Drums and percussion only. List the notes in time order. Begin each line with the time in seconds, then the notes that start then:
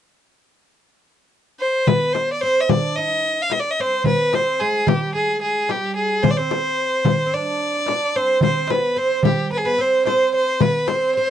1.87 darbuka dum, frame drum
2.15 darbuka tek, frame drum
2.56 darbuka ka
2.69 darbuka dum, frame drum
3.24 darbuka ka
3.50 darbuka tek, frame drum
4.04 darbuka dum, frame drum
4.33 darbuka tek, frame drum
4.73 darbuka ka
4.87 darbuka dum, frame drum
5.01 darbuka ka
5.15 darbuka ka
5.42 darbuka ka
5.69 darbuka tek, frame drum
6.24 darbuka dum, frame drum
6.51 darbuka tek, frame drum
6.92 darbuka ka
7.05 darbuka dum, frame drum
7.60 darbuka ka
7.86 darbuka tek, frame drum
8.41 darbuka dum, frame drum
8.67 darbuka tek, frame drum
8.95 darbuka ka
9.09 darbuka ka
9.23 darbuka dum, frame drum
9.78 darbuka ka
9.92 darbuka ka
10.06 darbuka tek, frame drum
10.33 darbuka ka
10.61 frame drum, darbuka dum
10.88 darbuka tek, frame drum